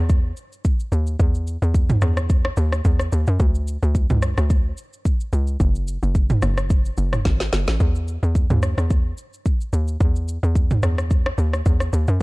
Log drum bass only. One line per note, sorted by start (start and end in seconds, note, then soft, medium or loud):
0.00 0.32 E2 medium
0.92 1.16 D#2 medium
1.20 1.57 E2 loud
1.62 1.97 E2 loud
2.02 2.51 E2 loud
2.57 2.81 D#2 loud
2.85 3.09 E2 loud
3.12 3.26 D#2 medium
3.28 3.38 F#2 loud
3.40 3.77 D2 loud
3.83 4.07 D2 loud
4.10 4.34 C#2 medium
4.38 4.73 D2 medium
5.33 5.57 C#2 loud
5.60 5.98 F#1 loud
6.03 6.38 F#1 loud
6.43 6.91 F#1 loud
6.98 7.22 F#1 medium
7.25 7.50 G#1 loud
7.53 7.66 F#1 medium
7.68 7.79 A1 loud
7.80 8.18 E2 loud
8.23 8.47 E2 medium
8.50 8.75 D#2 loud
8.78 9.13 E2 medium
9.73 9.97 D#2 medium
10.01 10.38 E2 loud
10.43 10.78 E2 loud
10.83 11.31 E2 loud
11.38 11.62 D#2 loud
11.66 11.90 E2 loud
11.93 12.06 D#2 loud
12.08 12.19 F#2 loud